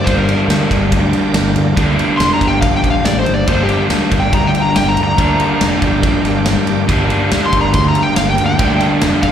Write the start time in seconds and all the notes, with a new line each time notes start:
0.04 G1 G2 D3 G3 A#4 C5 D5 G5, kick, ride
0.09 A#3 D4
0.18 A#4
0.29 ride
0.48 D2, snare, ride
0.71 G1, kick, ride
0.92 D2, kick, ride
1.13 ride
1.34 G1, snare, ride
1.55 D2, ride
1.76 D2 G2 D3 G3 A#3 D4, kick, ride
1.99 ride
2.17 F1 C6, snare, ride
2.34 A#5
2.41 G1, kick, ride
2.48 G5
2.61 A#1 F5, kick, ride
2.76 G5
2.84 A#1, kick, ride
2.91 F5
3.04 A1 D5, snare, ride
3.19 C5
3.25 G1, ride
3.34 D5
3.47 G1 G2 D3 G3 A#3 D4 G4 A#4 C5 D5 G5, kick, ride
3.63 G4
3.69 ride
3.90 D2, snare, ride
4.11 G1, kick, ride
4.20 G5
4.33 D2 A#5, kick, ride
4.47 G5
4.55 ride
4.62 A#5
4.76 G1 G5, snare, ride
4.89 A#5
4.97 D2, ride
5.04 A#5
5.17 D2 G2 D3 G3 A#3 D4, kick, ride
5.40 ride
5.61 F1, snare, ride
5.82 G1, kick, ride
6.03 A#1, kick, ride
6.25 G1, snare, ride
6.45 snare, ride
6.56 G2
6.67 ride
6.87 G1 G2 D3 G3 A#3 D4 G#4 B4 D#5, kick, ride
7.04 G4 A#4 D5
7.10 ride
7.31 D2, snare, ride
7.46 C6
7.52 G1, kick, ride
7.61 A#5
7.73 D2 C6, kick, ride
7.88 A#5
7.95 ride
8.03 G5
8.16 G1 F5, snare, ride
8.30 G5
8.38 D2, ride
8.46 G5
8.58 D2 G2 D3 G3 A#3 D4, kick, ride
8.80 ride
9.01 F1, snare, ride
9.23 G1 F5, kick, ride